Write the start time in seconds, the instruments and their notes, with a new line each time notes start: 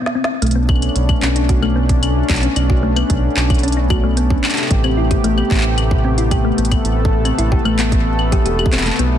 0.02 synth arpeggio sound B3
0.06 snare
0.15 synth arpeggio sound C4
0.24 snare
0.42 analog synth bass B1, analog synth pad A3 B3 C#4 D4, synth arpeggio sound A3, closed hi-hat
0.47 closed hi-hat
0.51 closed hi-hat
0.55 synth arpeggio sound B3
0.69 kick, claves
0.76 claves
0.82 closed hi-hat, claves
0.89 claves
0.96 analog synth bass B1, closed hi-hat
1.09 kick, claves
1.22 analog synth bass B1, synth arpeggio sound C#4, clap
1.36 synth arpeggio sound D4, closed hi-hat
1.49 synth arpeggio sound F#4, kick, closed hi-hat
1.62 synth arpeggio sound A3, claves
1.76 synth arpeggio sound B3
1.89 kick, closed hi-hat
2.03 closed hi-hat, claves
2.30 analog synth bass B1, kick, clap, closed hi-hat
2.33 clap
2.36 clap, closed hi-hat
2.40 synth arpeggio sound C#4, clap, closed hi-hat
2.56 analog synth bass B1, synth arpeggio sound D4, closed hi-hat, claves
2.70 synth arpeggio sound F#4, kick
2.83 synth arpeggio sound A3
2.96 synth arpeggio sound B3, closed hi-hat, claves
3.10 analog synth bass B1, kick, closed hi-hat
3.37 analog synth bass B1, clap
3.50 kick, closed hi-hat, claves
3.54 closed hi-hat
3.59 closed hi-hat
3.63 synth arpeggio sound C#4, closed hi-hat
3.68 closed hi-hat
3.72 closed hi-hat
3.77 synth arpeggio sound D4
3.90 synth arpeggio sound F#4, kick, claves
4.04 synth arpeggio sound A3
4.17 synth arpeggio sound B3, closed hi-hat
4.30 kick
4.44 analog synth pad C3 G4, clap, claves
4.48 clap, closed hi-hat
4.53 clap
4.57 clap, closed hi-hat
4.62 clap
4.66 clap
4.71 analog synth bass A1, kick, closed hi-hat
4.84 synth arpeggio sound C4, claves
4.97 synth arpeggio sound E4
5.11 synth arpeggio sound G4, kick, closed hi-hat
5.24 analog synth bass A1, synth arpeggio sound A3, closed hi-hat
5.38 synth arpeggio sound B3, claves
5.51 analog synth bass A1, kick, clap
5.54 clap
5.58 clap
5.61 clap
5.78 closed hi-hat, claves
5.91 kick
6.05 synth arpeggio sound C4
6.18 synth arpeggio sound E4, closed hi-hat
6.31 synth arpeggio sound G4, kick, closed hi-hat, claves
6.45 synth arpeggio sound A3
6.58 analog synth bass A1, synth arpeggio sound B3, analog synth pad A4, closed hi-hat
6.65 closed hi-hat
6.72 kick, closed hi-hat, claves
6.85 analog synth bass A1, closed hi-hat
7.05 kick
7.25 synth arpeggio sound C4, closed hi-hat, claves
7.38 analog synth bass A1, synth arpeggio sound E4, closed hi-hat
7.52 synth arpeggio sound G4, kick
7.65 analog synth bass A1, synth arpeggio sound A3, claves
7.79 synth arpeggio sound B3, clap, closed hi-hat
7.92 kick, closed hi-hat
8.19 claves
8.32 synth arpeggio sound G4, kick, closed hi-hat
8.46 analog synth bass E1, synth arpeggio sound G4, closed hi-hat
8.59 synth arpeggio sound G4, claves
8.66 kick
8.72 analog synth bass E1, synth arpeggio sound C4, clap, closed hi-hat
8.77 clap, closed hi-hat
8.81 clap
8.86 synth arpeggio sound A3, clap, closed hi-hat
8.90 clap
8.95 clap
8.99 analog synth bass B1, synth arpeggio sound B3, analog synth pad C#4 D4, closed hi-hat